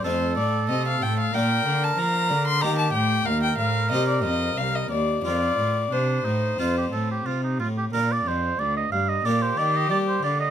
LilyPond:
<<
  \new Staff \with { instrumentName = "Violin" } { \time 4/4 \key bes \major \tempo 4 = 92 c''8 d''8 ees''16 f''16 g''16 f''16 g''8. a''16 bes''8. c'''16 | bes''16 a''16 g''8 f''16 g''16 f''8 ees''16 d''16 ees''8 f''16 ees''16 d''8 | d''4 c''2 r4 | r2 g'2 | }
  \new Staff \with { instrumentName = "Oboe" } { \time 4/4 \key bes \major a'2 bes'2 | g'4 bes'2~ bes'8 r8 | f'4 d'8 ees'8 f'16 g'16 a'16 g'16 f'16 ees'16 f'16 g'16 | bes'16 d''16 c''8 d''16 ees''16 f''16 ees''16 d''16 c''16 d''16 ees''16 d''16 c''16 d''16 ees''16 | }
  \new Staff \with { instrumentName = "Harpsichord" } { \time 4/4 \key bes \major <a ees' f'>2 <bes d' f'>2 | <bes ees' g'>2 <c' ees' g'>2 | <c' f' bes'>2 <c' f' a'>2 | <d' f' bes'>2 <bes g' bes'>2 | }
  \new Staff \with { instrumentName = "Harpsichord" } { \clef bass \time 4/4 \key bes \major f,8 a,8 c8 a,8 bes,8 d8 f8 d8 | ees8 a,8 ees,8 a,8 c8 f,8 c,8 ees,8 | f,8 a,8 c8 a,8 f,8 a,8 c8 a,8 | bes,8 f,8 d,8 g,8 bes,8 ees8 g8 d8 | }
  \new Staff \with { instrumentName = "Cello" } { \clef bass \time 4/4 \key bes \major f,8 a,8 c8 a,8 bes,8 d8 f8 d8 | ees8 a,8 ees,8 a,8 c8 f,8 c,8 ees,8 | f,8 a,8 c8 a,8 f,8 a,8 c8 a,8 | bes,8 f,8 d,8 g,8 bes,8 ees8 g8 d8 | }
>>